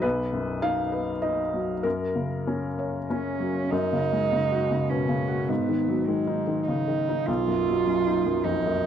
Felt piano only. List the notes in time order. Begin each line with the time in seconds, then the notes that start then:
0.02 B1 B4
0.33 F#2
0.62 D#4 F5
0.92 B4
1.22 D#4 D#5
1.54 F#3
1.83 F#2 A#4
2.15 C#3
2.47 C#4
2.79 C#5
3.10 C#4
3.40 F#3
3.72 F#2
3.93 C#3
4.13 G#3
4.32 C#3
4.51 F#4
4.71 C#3
4.91 B2
5.09 C#3
5.28 F#4
5.49 G#2
5.69 D#3
5.88 F#3
6.08 D#3
6.27 D#4
6.47 D#3
6.68 C#3
6.88 D#3
7.09 D#4
7.28 B1
7.47 F#2
7.67 F#3
7.87 F#2
8.07 D#4
8.26 F#2
8.45 F2
8.66 F#2